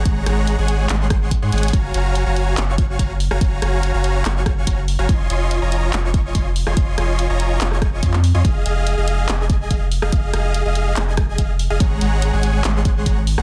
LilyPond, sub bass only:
\new Staff \with { instrumentName = "Sub bass" } { \clef bass \time 4/4 \key ges \lydian \tempo 4 = 143 aes,,8 aes,,8. aes,,8. aes,,4~ aes,,16 aes,16 aes,,8 | ges,,8 ges,,8. ges,,8. ges,,4 ges,,8. ges,,16 | ges,,8 ges,,8. ges,,8. ges,,4 ges,,8. ges,,16 | f,,8 f,,8. f,,8. f,,4 f,,8. f,,16 |
f,,8 f,,8. f,,8. f,,4 f,8. f,16 | f,,8 f,,8. f,,8. f,,4 f,,8. f,,16 | f,,8 f,,8. f,,8. f,,4 f,,8. f,,16 | aes,,8 aes,,8. aes,,8. aes,,4 aes,,8. aes,,16 | }